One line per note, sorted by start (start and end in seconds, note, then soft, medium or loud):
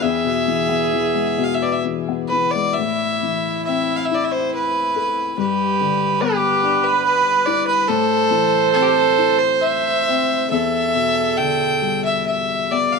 0.02 2.73 E2 medium
0.02 2.27 G#4 medium
0.02 1.45 E5 medium
0.25 1.36 B2 medium
0.48 0.92 E3 medium
0.69 2.07 B3 medium
0.93 1.84 E3 soft
1.15 2.54 G#3 soft
1.38 2.73 B2 medium
1.43 1.55 F5 medium
1.54 1.64 E5 medium
1.62 2.74 B4 soft
1.62 1.73 D5 medium
1.71 1.82 E5 medium
1.85 2.30 E3 soft
2.08 2.75 B3 medium
2.28 2.76 E3 soft
2.28 2.52 B4 medium
2.50 2.75 D5 medium
2.55 2.76 G#3 soft
2.73 5.34 E4 medium
2.73 3.64 E5 medium
2.78 5.35 A2 soft
3.23 4.93 E3 soft
3.64 5.35 C4 soft
3.64 3.97 E5 medium
3.96 4.06 F5 medium
4.04 4.16 E5 medium
4.11 5.35 E4 soft
4.11 4.25 D5 medium
4.24 4.33 E5 medium
4.31 4.53 C5 medium
4.54 5.34 B4 medium
4.96 5.37 A4 medium
5.38 7.85 G2 medium
5.38 6.23 G4 medium
5.38 6.22 B4 medium
5.81 7.43 D3 soft
6.20 7.85 B3 medium
6.20 6.85 G4 medium
6.20 7.88 B4 medium
6.63 7.85 D4 medium
6.83 7.03 B4 medium
7.04 7.47 B4 medium
7.45 7.88 E4 medium
7.45 7.66 D5 medium
7.67 7.89 B4 medium
7.88 10.47 A2 medium
7.88 8.71 A4 medium
7.88 10.46 C5 loud
8.31 10.02 E3 medium
8.72 10.07 C4 medium
8.72 8.84 A4 medium
8.82 8.88 G4 medium
8.87 9.39 A4 medium
9.19 10.47 E4 soft
9.38 9.63 C5 medium
9.61 10.49 E5 medium
10.09 10.50 C4 medium
10.49 12.99 E2 medium
10.49 12.69 A4 medium
10.49 11.39 E5 medium
10.95 12.69 B2 soft
11.37 12.99 D3 soft
11.37 12.04 G5 medium
11.81 12.99 G3 soft
12.04 12.25 E5 medium
12.26 12.72 E5 medium
12.71 12.99 B3 soft
12.71 12.94 D5 medium
12.92 12.99 F5 medium